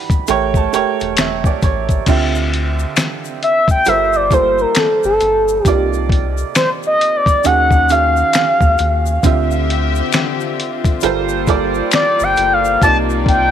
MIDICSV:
0, 0, Header, 1, 6, 480
1, 0, Start_track
1, 0, Tempo, 895522
1, 1110, Time_signature, 4, 2, 24, 8
1, 7242, End_track
2, 0, Start_track
2, 0, Title_t, "Analog synth lead"
2, 0, Program_c, 0, 81
2, 1841, Note_on_c, 0, 76, 88
2, 1972, Note_off_c, 0, 76, 0
2, 1989, Note_on_c, 0, 79, 98
2, 2080, Note_on_c, 0, 76, 107
2, 2088, Note_off_c, 0, 79, 0
2, 2229, Note_on_c, 0, 74, 93
2, 2237, Note_off_c, 0, 76, 0
2, 2322, Note_on_c, 0, 72, 97
2, 2330, Note_off_c, 0, 74, 0
2, 2472, Note_on_c, 0, 70, 85
2, 2480, Note_off_c, 0, 72, 0
2, 2563, Note_on_c, 0, 69, 87
2, 2571, Note_off_c, 0, 70, 0
2, 2704, Note_off_c, 0, 69, 0
2, 2709, Note_on_c, 0, 69, 85
2, 3030, Note_off_c, 0, 69, 0
2, 3030, Note_on_c, 0, 67, 85
2, 3161, Note_off_c, 0, 67, 0
2, 3519, Note_on_c, 0, 72, 85
2, 3589, Note_off_c, 0, 72, 0
2, 3681, Note_on_c, 0, 75, 89
2, 3840, Note_on_c, 0, 74, 97
2, 3848, Note_off_c, 0, 75, 0
2, 3996, Note_on_c, 0, 78, 113
2, 4004, Note_off_c, 0, 74, 0
2, 4240, Note_on_c, 0, 77, 109
2, 4248, Note_off_c, 0, 78, 0
2, 4955, Note_off_c, 0, 77, 0
2, 6401, Note_on_c, 0, 74, 91
2, 6557, Note_on_c, 0, 79, 102
2, 6565, Note_off_c, 0, 74, 0
2, 6717, Note_on_c, 0, 77, 101
2, 6726, Note_off_c, 0, 79, 0
2, 6873, Note_off_c, 0, 77, 0
2, 6877, Note_on_c, 0, 81, 109
2, 6952, Note_off_c, 0, 81, 0
2, 7119, Note_on_c, 0, 79, 100
2, 7242, Note_off_c, 0, 79, 0
2, 7242, End_track
3, 0, Start_track
3, 0, Title_t, "Upright piano"
3, 0, Program_c, 1, 0
3, 0, Control_c, 1, 64, 127
3, 0, Note_on_c, 1, 52, 85
3, 0, Note_on_c, 1, 62, 81
3, 0, Note_on_c, 1, 67, 86
3, 0, Note_on_c, 1, 78, 102
3, 0, Note_on_c, 1, 83, 61
3, 137, Note_off_c, 1, 83, 0
3, 150, Note_on_c, 1, 57, 90
3, 154, Note_off_c, 1, 67, 0
3, 154, Note_on_c, 1, 67, 78
3, 156, Control_c, 1, 64, 0
3, 157, Note_off_c, 1, 62, 0
3, 157, Note_off_c, 1, 78, 0
3, 157, Note_on_c, 1, 79, 71
3, 158, Note_on_c, 1, 70, 84
3, 160, Note_off_c, 1, 52, 0
3, 163, Note_on_c, 1, 73, 107
3, 260, Control_c, 1, 64, 127
3, 290, Note_off_c, 1, 79, 0
3, 305, Note_on_c, 1, 81, 63
3, 369, Note_off_c, 1, 57, 0
3, 371, Note_off_c, 1, 67, 0
3, 373, Note_off_c, 1, 70, 0
3, 376, Note_off_c, 1, 73, 0
3, 388, Note_off_c, 1, 81, 0
3, 389, Note_on_c, 1, 57, 80
3, 394, Note_on_c, 1, 67, 79
3, 396, Note_on_c, 1, 79, 70
3, 399, Note_on_c, 1, 70, 82
3, 403, Note_on_c, 1, 73, 101
3, 616, Note_off_c, 1, 79, 0
3, 638, Note_on_c, 1, 76, 70
3, 771, Note_off_c, 1, 76, 0
3, 785, Note_on_c, 1, 74, 61
3, 867, Note_off_c, 1, 74, 0
3, 870, Note_off_c, 1, 73, 0
3, 878, Note_on_c, 1, 73, 68
3, 1048, Note_off_c, 1, 57, 0
3, 1050, Note_off_c, 1, 67, 0
3, 1052, Note_off_c, 1, 70, 0
3, 1097, Note_off_c, 1, 73, 0
3, 1109, Note_on_c, 1, 50, 83
3, 1113, Note_on_c, 1, 60, 73
3, 1116, Control_c, 1, 64, 0
3, 1116, Note_on_c, 1, 65, 75
3, 1120, Note_on_c, 1, 67, 73
3, 1123, Note_on_c, 1, 76, 85
3, 1218, Control_c, 1, 64, 127
3, 1987, Note_off_c, 1, 50, 0
3, 1989, Note_off_c, 1, 60, 0
3, 1990, Note_off_c, 1, 65, 0
3, 1992, Note_off_c, 1, 67, 0
3, 1994, Note_off_c, 1, 76, 0
3, 2068, Note_on_c, 1, 55, 77
3, 2071, Note_on_c, 1, 65, 68
3, 2075, Control_c, 1, 64, 0
3, 2075, Note_on_c, 1, 69, 66
3, 2078, Note_on_c, 1, 70, 70
3, 2082, Note_on_c, 1, 72, 85
3, 2158, Control_c, 1, 64, 127
3, 2288, Note_off_c, 1, 55, 0
3, 2289, Note_off_c, 1, 65, 0
3, 2292, Note_off_c, 1, 69, 0
3, 2293, Note_off_c, 1, 70, 0
3, 2295, Note_off_c, 1, 72, 0
3, 2309, Note_on_c, 1, 55, 74
3, 2312, Note_on_c, 1, 65, 65
3, 2316, Note_on_c, 1, 69, 66
3, 2320, Note_on_c, 1, 58, 65
3, 2323, Note_on_c, 1, 72, 79
3, 2967, Note_off_c, 1, 55, 0
3, 2969, Note_off_c, 1, 65, 0
3, 2971, Note_off_c, 1, 69, 0
3, 2973, Note_off_c, 1, 58, 0
3, 2974, Note_off_c, 1, 72, 0
3, 3028, Note_on_c, 1, 48, 64
3, 3032, Note_on_c, 1, 58, 61
3, 3035, Note_on_c, 1, 62, 50
3, 3038, Control_c, 1, 64, 0
3, 3040, Note_on_c, 1, 65, 65
3, 3043, Note_on_c, 1, 74, 78
3, 3070, Note_on_c, 1, 63, 60
3, 3075, Note_off_c, 1, 62, 0
3, 3124, Control_c, 1, 64, 127
3, 3906, Note_off_c, 1, 48, 0
3, 3908, Note_off_c, 1, 58, 0
3, 3912, Note_off_c, 1, 65, 0
3, 3914, Note_off_c, 1, 74, 0
3, 3927, Note_off_c, 1, 63, 0
3, 3987, Note_on_c, 1, 51, 74
3, 3991, Note_on_c, 1, 61, 68
3, 3995, Note_on_c, 1, 66, 69
3, 3997, Control_c, 1, 64, 0
3, 3997, Note_on_c, 1, 68, 72
3, 4001, Note_on_c, 1, 78, 86
3, 4094, Control_c, 1, 64, 127
3, 4208, Note_off_c, 1, 51, 0
3, 4210, Note_off_c, 1, 61, 0
3, 4212, Note_off_c, 1, 66, 0
3, 4213, Note_off_c, 1, 68, 0
3, 4214, Note_off_c, 1, 78, 0
3, 4231, Note_on_c, 1, 51, 74
3, 4233, Note_on_c, 1, 61, 65
3, 4238, Note_on_c, 1, 66, 66
3, 4241, Note_on_c, 1, 68, 64
3, 4244, Note_on_c, 1, 77, 84
3, 4888, Note_off_c, 1, 51, 0
3, 4890, Note_off_c, 1, 61, 0
3, 4892, Note_off_c, 1, 66, 0
3, 4893, Note_off_c, 1, 68, 0
3, 4895, Note_off_c, 1, 77, 0
3, 4951, Note_on_c, 1, 50, 82
3, 4954, Note_on_c, 1, 60, 74
3, 4955, Control_c, 1, 64, 0
3, 4958, Note_on_c, 1, 65, 75
3, 4961, Note_on_c, 1, 67, 74
3, 4965, Note_on_c, 1, 76, 95
3, 5036, Control_c, 1, 64, 127
3, 5828, Note_off_c, 1, 50, 0
3, 5829, Note_off_c, 1, 60, 0
3, 5831, Note_off_c, 1, 65, 0
3, 5833, Note_off_c, 1, 67, 0
3, 5835, Note_off_c, 1, 76, 0
3, 5909, Note_on_c, 1, 55, 94
3, 5913, Note_on_c, 1, 65, 87
3, 5916, Note_on_c, 1, 69, 91
3, 5917, Control_c, 1, 64, 0
3, 5920, Note_on_c, 1, 70, 83
3, 5924, Note_on_c, 1, 72, 104
3, 6019, Control_c, 1, 64, 127
3, 6129, Note_off_c, 1, 55, 0
3, 6131, Note_off_c, 1, 65, 0
3, 6132, Note_off_c, 1, 69, 0
3, 6134, Note_off_c, 1, 70, 0
3, 6136, Note_off_c, 1, 72, 0
3, 6149, Note_on_c, 1, 55, 89
3, 6153, Note_on_c, 1, 65, 82
3, 6156, Note_on_c, 1, 69, 83
3, 6160, Note_on_c, 1, 70, 84
3, 6163, Note_on_c, 1, 74, 99
3, 6808, Note_off_c, 1, 55, 0
3, 6809, Note_off_c, 1, 65, 0
3, 6811, Note_off_c, 1, 69, 0
3, 6813, Note_off_c, 1, 70, 0
3, 6814, Note_off_c, 1, 74, 0
3, 6870, Note_on_c, 1, 48, 68
3, 6873, Note_on_c, 1, 58, 64
3, 6877, Control_c, 1, 64, 0
3, 6877, Note_on_c, 1, 63, 71
3, 6880, Note_on_c, 1, 65, 66
3, 6883, Note_on_c, 1, 74, 79
3, 6976, Control_c, 1, 64, 127
3, 7242, Note_off_c, 1, 48, 0
3, 7242, Note_off_c, 1, 58, 0
3, 7242, Note_off_c, 1, 63, 0
3, 7242, Note_off_c, 1, 65, 0
3, 7242, Note_off_c, 1, 74, 0
3, 7242, End_track
4, 0, Start_track
4, 0, Title_t, "String section"
4, 0, Program_c, 2, 48
4, 4950, Note_on_c, 2, 60, 70
4, 4952, Note_on_c, 2, 50, 71
4, 4952, Note_on_c, 2, 65, 68
4, 4952, Note_on_c, 2, 67, 78
4, 4952, Note_on_c, 2, 76, 71
4, 5900, Note_off_c, 2, 60, 0
4, 5901, Note_off_c, 2, 50, 0
4, 5901, Note_off_c, 2, 67, 0
4, 5901, Note_off_c, 2, 76, 0
4, 5910, Note_on_c, 2, 55, 82
4, 5910, Note_on_c, 2, 58, 75
4, 6860, Note_off_c, 2, 55, 0
4, 6869, Note_on_c, 2, 74, 71
4, 6871, Note_on_c, 2, 48, 79
4, 6871, Note_on_c, 2, 63, 69
4, 7242, Note_off_c, 2, 48, 0
4, 7242, Note_off_c, 2, 58, 0
4, 7242, Note_off_c, 2, 63, 0
4, 7242, Note_off_c, 2, 65, 0
4, 7242, Note_off_c, 2, 74, 0
4, 7242, End_track
5, 0, Start_track
5, 0, Title_t, "Analog synth bass"
5, 0, Program_c, 3, 38
5, 157, Note_on_c, 3, 33, 96
5, 363, Note_off_c, 3, 33, 0
5, 398, Note_on_c, 3, 28, 51
5, 455, Note_off_c, 3, 28, 0
5, 545, Note_on_c, 3, 28, 83
5, 622, Note_off_c, 3, 28, 0
5, 637, Note_on_c, 3, 28, 94
5, 763, Note_off_c, 3, 28, 0
5, 875, Note_on_c, 3, 33, 89
5, 1082, Note_off_c, 3, 33, 0
5, 1111, Note_on_c, 3, 38, 96
5, 1530, Note_off_c, 3, 38, 0
5, 2076, Note_on_c, 3, 31, 109
5, 2492, Note_off_c, 3, 31, 0
5, 2704, Note_on_c, 3, 31, 83
5, 2782, Note_off_c, 3, 31, 0
5, 2796, Note_on_c, 3, 31, 87
5, 3003, Note_off_c, 3, 31, 0
5, 3033, Note_on_c, 3, 36, 99
5, 3451, Note_off_c, 3, 36, 0
5, 3996, Note_on_c, 3, 39, 100
5, 4412, Note_off_c, 3, 39, 0
5, 4617, Note_on_c, 3, 39, 93
5, 4698, Note_off_c, 3, 39, 0
5, 4716, Note_on_c, 3, 39, 98
5, 4923, Note_off_c, 3, 39, 0
5, 4953, Note_on_c, 3, 38, 100
5, 5370, Note_off_c, 3, 38, 0
5, 5917, Note_on_c, 3, 31, 102
5, 6333, Note_off_c, 3, 31, 0
5, 6546, Note_on_c, 3, 31, 87
5, 6623, Note_off_c, 3, 31, 0
5, 6637, Note_on_c, 3, 31, 88
5, 6843, Note_off_c, 3, 31, 0
5, 6874, Note_on_c, 3, 36, 109
5, 7242, Note_off_c, 3, 36, 0
5, 7242, End_track
6, 0, Start_track
6, 0, Title_t, "Drums"
6, 52, Note_on_c, 9, 36, 97
6, 56, Note_on_c, 9, 42, 35
6, 59, Note_on_c, 9, 82, 45
6, 106, Note_off_c, 9, 36, 0
6, 109, Note_off_c, 9, 42, 0
6, 112, Note_off_c, 9, 82, 0
6, 147, Note_on_c, 9, 82, 64
6, 151, Note_on_c, 9, 42, 79
6, 201, Note_off_c, 9, 82, 0
6, 205, Note_off_c, 9, 42, 0
6, 290, Note_on_c, 9, 36, 77
6, 295, Note_on_c, 9, 82, 47
6, 344, Note_off_c, 9, 36, 0
6, 349, Note_off_c, 9, 82, 0
6, 393, Note_on_c, 9, 82, 49
6, 395, Note_on_c, 9, 42, 55
6, 446, Note_off_c, 9, 82, 0
6, 449, Note_off_c, 9, 42, 0
6, 537, Note_on_c, 9, 82, 38
6, 543, Note_on_c, 9, 42, 33
6, 591, Note_off_c, 9, 82, 0
6, 596, Note_off_c, 9, 42, 0
6, 625, Note_on_c, 9, 42, 83
6, 628, Note_on_c, 9, 26, 72
6, 628, Note_on_c, 9, 82, 72
6, 634, Note_off_c, 9, 26, 0
6, 634, Note_on_c, 9, 26, 92
6, 636, Note_on_c, 9, 38, 115
6, 679, Note_off_c, 9, 42, 0
6, 682, Note_off_c, 9, 82, 0
6, 687, Note_off_c, 9, 26, 0
6, 690, Note_off_c, 9, 38, 0
6, 772, Note_on_c, 9, 36, 87
6, 779, Note_on_c, 9, 82, 44
6, 826, Note_off_c, 9, 36, 0
6, 833, Note_off_c, 9, 82, 0
6, 869, Note_on_c, 9, 82, 44
6, 871, Note_on_c, 9, 36, 91
6, 871, Note_on_c, 9, 42, 56
6, 923, Note_off_c, 9, 82, 0
6, 925, Note_off_c, 9, 36, 0
6, 925, Note_off_c, 9, 42, 0
6, 1011, Note_on_c, 9, 42, 32
6, 1013, Note_on_c, 9, 36, 78
6, 1019, Note_on_c, 9, 82, 47
6, 1065, Note_off_c, 9, 42, 0
6, 1067, Note_off_c, 9, 36, 0
6, 1072, Note_off_c, 9, 82, 0
6, 1106, Note_on_c, 9, 49, 83
6, 1108, Note_on_c, 9, 36, 92
6, 1110, Note_on_c, 9, 82, 53
6, 1111, Note_on_c, 9, 42, 79
6, 1160, Note_off_c, 9, 49, 0
6, 1161, Note_off_c, 9, 36, 0
6, 1164, Note_off_c, 9, 82, 0
6, 1165, Note_off_c, 9, 42, 0
6, 1260, Note_on_c, 9, 82, 38
6, 1314, Note_off_c, 9, 82, 0
6, 1359, Note_on_c, 9, 42, 60
6, 1413, Note_off_c, 9, 42, 0
6, 1496, Note_on_c, 9, 82, 43
6, 1550, Note_off_c, 9, 82, 0
6, 1589, Note_on_c, 9, 26, 68
6, 1589, Note_on_c, 9, 82, 68
6, 1591, Note_on_c, 9, 42, 78
6, 1593, Note_off_c, 9, 26, 0
6, 1593, Note_on_c, 9, 26, 91
6, 1595, Note_on_c, 9, 38, 110
6, 1643, Note_off_c, 9, 82, 0
6, 1644, Note_off_c, 9, 42, 0
6, 1646, Note_off_c, 9, 26, 0
6, 1648, Note_off_c, 9, 38, 0
6, 1740, Note_on_c, 9, 82, 40
6, 1794, Note_off_c, 9, 82, 0
6, 1836, Note_on_c, 9, 42, 65
6, 1890, Note_off_c, 9, 42, 0
6, 1972, Note_on_c, 9, 36, 90
6, 1976, Note_on_c, 9, 42, 38
6, 1977, Note_on_c, 9, 82, 44
6, 2025, Note_off_c, 9, 36, 0
6, 2030, Note_off_c, 9, 42, 0
6, 2031, Note_off_c, 9, 82, 0
6, 2065, Note_on_c, 9, 82, 63
6, 2072, Note_on_c, 9, 42, 72
6, 2118, Note_off_c, 9, 82, 0
6, 2125, Note_off_c, 9, 42, 0
6, 2214, Note_on_c, 9, 82, 47
6, 2267, Note_off_c, 9, 82, 0
6, 2309, Note_on_c, 9, 36, 83
6, 2310, Note_on_c, 9, 82, 47
6, 2315, Note_on_c, 9, 42, 58
6, 2362, Note_off_c, 9, 36, 0
6, 2364, Note_off_c, 9, 82, 0
6, 2368, Note_off_c, 9, 42, 0
6, 2456, Note_on_c, 9, 82, 36
6, 2510, Note_off_c, 9, 82, 0
6, 2544, Note_on_c, 9, 42, 82
6, 2546, Note_on_c, 9, 26, 74
6, 2546, Note_on_c, 9, 82, 70
6, 2553, Note_off_c, 9, 26, 0
6, 2553, Note_on_c, 9, 26, 88
6, 2555, Note_on_c, 9, 38, 115
6, 2598, Note_off_c, 9, 42, 0
6, 2600, Note_off_c, 9, 82, 0
6, 2607, Note_off_c, 9, 26, 0
6, 2609, Note_off_c, 9, 38, 0
6, 2698, Note_on_c, 9, 82, 46
6, 2751, Note_off_c, 9, 82, 0
6, 2789, Note_on_c, 9, 82, 39
6, 2790, Note_on_c, 9, 42, 61
6, 2842, Note_off_c, 9, 82, 0
6, 2844, Note_off_c, 9, 42, 0
6, 2939, Note_on_c, 9, 82, 50
6, 2992, Note_off_c, 9, 82, 0
6, 3028, Note_on_c, 9, 36, 103
6, 3031, Note_on_c, 9, 82, 55
6, 3032, Note_on_c, 9, 42, 80
6, 3082, Note_off_c, 9, 36, 0
6, 3085, Note_off_c, 9, 42, 0
6, 3085, Note_off_c, 9, 82, 0
6, 3180, Note_on_c, 9, 82, 39
6, 3233, Note_off_c, 9, 82, 0
6, 3267, Note_on_c, 9, 36, 91
6, 3281, Note_on_c, 9, 42, 68
6, 3320, Note_off_c, 9, 36, 0
6, 3335, Note_off_c, 9, 42, 0
6, 3416, Note_on_c, 9, 82, 41
6, 3470, Note_off_c, 9, 82, 0
6, 3512, Note_on_c, 9, 26, 66
6, 3512, Note_on_c, 9, 82, 68
6, 3513, Note_on_c, 9, 42, 82
6, 3515, Note_off_c, 9, 26, 0
6, 3515, Note_on_c, 9, 26, 90
6, 3517, Note_on_c, 9, 38, 110
6, 3566, Note_off_c, 9, 82, 0
6, 3567, Note_off_c, 9, 42, 0
6, 3569, Note_off_c, 9, 26, 0
6, 3571, Note_off_c, 9, 38, 0
6, 3660, Note_on_c, 9, 82, 42
6, 3714, Note_off_c, 9, 82, 0
6, 3759, Note_on_c, 9, 42, 65
6, 3812, Note_off_c, 9, 42, 0
6, 3892, Note_on_c, 9, 36, 95
6, 3897, Note_on_c, 9, 42, 35
6, 3901, Note_on_c, 9, 82, 43
6, 3946, Note_off_c, 9, 36, 0
6, 3951, Note_off_c, 9, 42, 0
6, 3954, Note_off_c, 9, 82, 0
6, 3987, Note_on_c, 9, 82, 68
6, 3992, Note_on_c, 9, 42, 75
6, 4040, Note_off_c, 9, 82, 0
6, 4046, Note_off_c, 9, 42, 0
6, 4131, Note_on_c, 9, 36, 82
6, 4135, Note_on_c, 9, 82, 47
6, 4184, Note_off_c, 9, 36, 0
6, 4189, Note_off_c, 9, 82, 0
6, 4228, Note_on_c, 9, 82, 50
6, 4236, Note_on_c, 9, 42, 62
6, 4282, Note_off_c, 9, 82, 0
6, 4290, Note_off_c, 9, 42, 0
6, 4376, Note_on_c, 9, 82, 38
6, 4430, Note_off_c, 9, 82, 0
6, 4467, Note_on_c, 9, 42, 87
6, 4468, Note_on_c, 9, 26, 68
6, 4468, Note_on_c, 9, 82, 69
6, 4475, Note_off_c, 9, 26, 0
6, 4475, Note_on_c, 9, 26, 90
6, 4477, Note_on_c, 9, 38, 110
6, 4520, Note_off_c, 9, 42, 0
6, 4521, Note_off_c, 9, 82, 0
6, 4529, Note_off_c, 9, 26, 0
6, 4531, Note_off_c, 9, 38, 0
6, 4613, Note_on_c, 9, 36, 90
6, 4617, Note_on_c, 9, 82, 47
6, 4666, Note_off_c, 9, 36, 0
6, 4670, Note_off_c, 9, 82, 0
6, 4706, Note_on_c, 9, 82, 41
6, 4711, Note_on_c, 9, 42, 59
6, 4760, Note_off_c, 9, 82, 0
6, 4765, Note_off_c, 9, 42, 0
6, 4856, Note_on_c, 9, 82, 52
6, 4909, Note_off_c, 9, 82, 0
6, 4949, Note_on_c, 9, 36, 96
6, 4949, Note_on_c, 9, 82, 55
6, 4952, Note_on_c, 9, 42, 85
6, 5002, Note_off_c, 9, 36, 0
6, 5002, Note_off_c, 9, 82, 0
6, 5006, Note_off_c, 9, 42, 0
6, 5097, Note_on_c, 9, 82, 40
6, 5151, Note_off_c, 9, 82, 0
6, 5200, Note_on_c, 9, 42, 63
6, 5254, Note_off_c, 9, 42, 0
6, 5335, Note_on_c, 9, 82, 43
6, 5388, Note_off_c, 9, 82, 0
6, 5427, Note_on_c, 9, 26, 72
6, 5427, Note_on_c, 9, 82, 68
6, 5433, Note_on_c, 9, 42, 89
6, 5435, Note_off_c, 9, 26, 0
6, 5435, Note_on_c, 9, 26, 93
6, 5437, Note_on_c, 9, 38, 111
6, 5481, Note_off_c, 9, 82, 0
6, 5486, Note_off_c, 9, 42, 0
6, 5489, Note_off_c, 9, 26, 0
6, 5491, Note_off_c, 9, 38, 0
6, 5576, Note_on_c, 9, 82, 42
6, 5630, Note_off_c, 9, 82, 0
6, 5680, Note_on_c, 9, 42, 65
6, 5733, Note_off_c, 9, 42, 0
6, 5813, Note_on_c, 9, 36, 90
6, 5815, Note_on_c, 9, 82, 43
6, 5817, Note_on_c, 9, 42, 39
6, 5866, Note_off_c, 9, 36, 0
6, 5869, Note_off_c, 9, 82, 0
6, 5871, Note_off_c, 9, 42, 0
6, 5901, Note_on_c, 9, 82, 71
6, 5913, Note_on_c, 9, 42, 80
6, 5954, Note_off_c, 9, 82, 0
6, 5966, Note_off_c, 9, 42, 0
6, 6050, Note_on_c, 9, 82, 46
6, 6104, Note_off_c, 9, 82, 0
6, 6147, Note_on_c, 9, 82, 48
6, 6150, Note_on_c, 9, 36, 75
6, 6156, Note_on_c, 9, 42, 58
6, 6201, Note_off_c, 9, 82, 0
6, 6204, Note_off_c, 9, 36, 0
6, 6209, Note_off_c, 9, 42, 0
6, 6294, Note_on_c, 9, 82, 38
6, 6348, Note_off_c, 9, 82, 0
6, 6386, Note_on_c, 9, 26, 75
6, 6386, Note_on_c, 9, 82, 75
6, 6388, Note_on_c, 9, 42, 89
6, 6396, Note_off_c, 9, 26, 0
6, 6396, Note_on_c, 9, 26, 93
6, 6398, Note_on_c, 9, 38, 117
6, 6440, Note_off_c, 9, 82, 0
6, 6441, Note_off_c, 9, 42, 0
6, 6450, Note_off_c, 9, 26, 0
6, 6452, Note_off_c, 9, 38, 0
6, 6537, Note_on_c, 9, 82, 48
6, 6590, Note_off_c, 9, 82, 0
6, 6627, Note_on_c, 9, 82, 42
6, 6633, Note_on_c, 9, 42, 60
6, 6681, Note_off_c, 9, 82, 0
6, 6686, Note_off_c, 9, 42, 0
6, 6779, Note_on_c, 9, 82, 47
6, 6833, Note_off_c, 9, 82, 0
6, 6870, Note_on_c, 9, 36, 104
6, 6873, Note_on_c, 9, 82, 56
6, 6874, Note_on_c, 9, 42, 81
6, 6923, Note_off_c, 9, 36, 0
6, 6926, Note_off_c, 9, 82, 0
6, 6927, Note_off_c, 9, 42, 0
6, 7021, Note_on_c, 9, 82, 42
6, 7074, Note_off_c, 9, 82, 0
6, 7107, Note_on_c, 9, 36, 91
6, 7121, Note_on_c, 9, 42, 71
6, 7161, Note_off_c, 9, 36, 0
6, 7174, Note_off_c, 9, 42, 0
6, 7242, End_track
0, 0, End_of_file